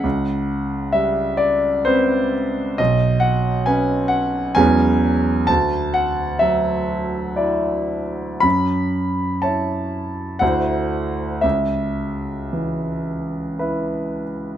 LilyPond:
<<
  \new Staff \with { instrumentName = "Grand piano" } { \time 3/4 \key cis \minor \tempo 4 = 63 fis''4 e''8 d''8 c''8 r8 | dis''8 fis''8 gis''8 fis''8 gis''4 | a''8 fis''8 e''2 | b''4 a''4 fis''4 |
e''2 r4 | }
  \new Staff \with { instrumentName = "Grand piano" } { \time 3/4 \key cis \minor cis,4 g4 <c' b'>4 | b,,4 <cis' b'>4 <e, fis gis cis' b'>4 | d,4 fis4 <e' d''>4 | fis,4 <e' cis''>4 <d, d a e' c''>4 |
cis,4 e4 <e' b'>4 | }
>>